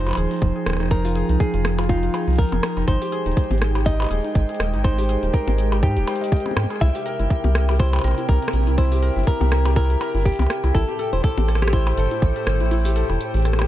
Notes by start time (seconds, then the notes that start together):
Already playing: F1 F3 D#4 F4 G#4 C5 G5
0.06 F4, closed hi-hat, percussion blips
0.09 percussion blips
0.11 percussion blips
0.13 percussion blips
0.15 D#1 G#4, closed hi-hat, percussion blips
0.31 D#4 G5, closed hi-hat
0.34 closed hi-hat
0.37 closed hi-hat
0.39 closed hi-hat
0.42 F1, kick, closed hi-hat
0.56 G#4
0.66 D#1, cross-stick, closed hi-hat
0.70 cross-stick
0.73 cross-stick
0.77 D#4, cross-stick
0.80 F1, cross-stick, closed hi-hat
0.83 cross-stick
0.86 cross-stick
0.88 D#4 A#4, kick, cross-stick, closed hi-hat
1.05 F4, open hi-hat
1.15 G#4, closed hi-hat
1.29 C2 D#4, closed hi-hat
1.40 G#4, kick, closed hi-hat
1.54 F1 F4, closed hi-hat
1.65 G#4, cross-stick, closed hi-hat
1.78 F4, closed hi-hat, percussion blips
1.89 D#4 F4, kick, closed hi-hat
2.03 F4, closed hi-hat
2.14 G#4, closed hi-hat, percussion blips
2.28 C2 D#4, closed hi-hat
2.30 closed hi-hat
2.33 closed hi-hat
2.36 A#4, kick, closed hi-hat
2.39 closed hi-hat
2.42 closed hi-hat
2.45 closed hi-hat
2.49 F1 G#4, closed hi-hat, percussion blips
2.63 cross-stick, closed hi-hat, percussion blips
2.77 F1 D#4, closed hi-hat, percussion blips
2.88 G#1 G#3 D#4 C5, kick, closed hi-hat
3.01 G4, open hi-hat
3.12 G#4, closed hi-hat
3.26 D#1 D#4, closed hi-hat
3.32 closed hi-hat
3.37 kick, closed hi-hat
3.44 closed hi-hat
3.49 G#1 G4 C5, closed hi-hat, percussion blips
3.53 closed hi-hat
3.58 G#4, cross-stick, closed hi-hat
3.62 closed hi-hat
3.75 G4, closed hi-hat, percussion blips
3.79 A#4
3.86 D#4 D#5, kick, closed hi-hat
4.00 G4, percussion blips
4.02 percussion blips
4.04 percussion blips
4.07 percussion blips
4.09 D#1 G#4, closed hi-hat, percussion blips
4.24 D#4, closed hi-hat
4.35 G#1, kick, closed hi-hat
4.49 G#4, closed hi-hat
4.55 closed hi-hat
4.60 D#1, cross-stick, closed hi-hat
4.67 closed hi-hat
4.74 G#1 D#4, closed hi-hat
4.84 D#4 C5, kick, closed hi-hat
4.98 G4, open hi-hat
5.09 G#4, closed hi-hat
5.23 D#1 D#4, closed hi-hat
5.34 A#4, kick, closed hi-hat
5.47 G#1 G4, closed hi-hat, percussion blips
5.58 G#4, closed hi-hat
5.72 G4, closed hi-hat, percussion blips
5.83 G#2 D#4 G4, kick
5.97 D#1 G4, closed hi-hat
6.07 C5, closed hi-hat, percussion blips
6.16 closed hi-hat
6.21 D#5, closed hi-hat
6.24 closed hi-hat
6.28 D#5, kick, closed hi-hat
6.32 closed hi-hat
6.37 closed hi-hat
6.40 closed hi-hat
6.46 G#4, percussion blips
6.51 percussion blips
6.57 G#2, cross-stick, percussion blips
6.64 percussion blips
6.70 G#4, closed hi-hat, percussion blips
6.81 C2 C3 E4 E5, kick, closed hi-hat
6.95 G4, open hi-hat
7.06 A#4, closed hi-hat
7.16 G1 C4 E4, closed hi-hat
7.30 kick, closed hi-hat
7.44 C2 G4, closed hi-hat, percussion blips
7.55 A#4, cross-stick, closed hi-hat
7.69 G4, closed hi-hat, percussion blips
7.71 closed hi-hat
7.76 kick, closed hi-hat
7.80 E4 C5, closed hi-hat
7.88 closed hi-hat
7.93 G4, closed hi-hat, percussion blips
7.96 percussion blips
7.99 percussion blips
8.02 A#1 A#4, closed hi-hat, percussion blips
8.04 percussion blips
8.08 percussion blips
8.11 percussion blips
8.14 E4 E5, closed hi-hat, percussion blips
8.29 C2 A#4, kick, closed hi-hat
8.42 A#4, closed hi-hat
8.48 cross-stick
8.53 A#1, closed hi-hat
8.67 C2 E4, closed hi-hat
8.78 E4 C5, kick, closed hi-hat
8.92 G4, open hi-hat
9.03 A#4, closed hi-hat
9.16 G1 E4, closed hi-hat
9.19 closed hi-hat
9.24 kick, closed hi-hat
9.27 A#4, closed hi-hat
9.41 C2 G4, closed hi-hat, percussion blips
9.52 A#4, cross-stick, closed hi-hat
9.65 G4, percussion blips
9.76 E4 A#4, kick, closed hi-hat
9.90 G4, closed hi-hat
10.01 A#4, closed hi-hat, percussion blips
10.15 G1 E4, closed hi-hat
10.17 closed hi-hat
10.20 closed hi-hat
10.23 kick, closed hi-hat
10.26 G4, closed hi-hat
10.29 closed hi-hat
10.32 closed hi-hat
10.36 C2 A#4, closed hi-hat
10.39 closed hi-hat, percussion blips
10.42 closed hi-hat, percussion blips
10.46 cross-stick, closed hi-hat, percussion blips
10.64 C2 E4, closed hi-hat, percussion blips
10.75 A1 A2 E4 A4, kick, closed hi-hat
10.88 A3 G4
10.99 A4, closed hi-hat
11.06 A4 C5
11.13 E1 E4 C5, closed hi-hat
11.24 A4, kick, closed hi-hat
11.37 A1 G4, closed hi-hat, percussion blips
11.48 A4, cross-stick, closed hi-hat
11.55 cross-stick
11.62 G4, cross-stick, closed hi-hat
11.68 cross-stick
11.73 E4 C5, kick, closed hi-hat
11.87 G4, closed hi-hat, percussion blips
11.98 G1 A4, closed hi-hat
12.11 E4, closed hi-hat
12.22 A1, kick, closed hi-hat
12.36 A4, closed hi-hat
12.47 G1, cross-stick
12.61 A1 E4, closed hi-hat
12.71 E4, closed hi-hat
12.85 G4, open hi-hat
12.96 A4, closed hi-hat
13.10 E1 E4, closed hi-hat, percussion blips
13.21 closed hi-hat
13.34 A1 G4, closed hi-hat
13.37 closed hi-hat
13.40 closed hi-hat
13.42 A4, cross-stick, closed hi-hat
13.45 closed hi-hat
13.49 closed hi-hat
13.52 cross-stick, closed hi-hat
13.55 G4, closed hi-hat
13.59 cross-stick, closed hi-hat, percussion blips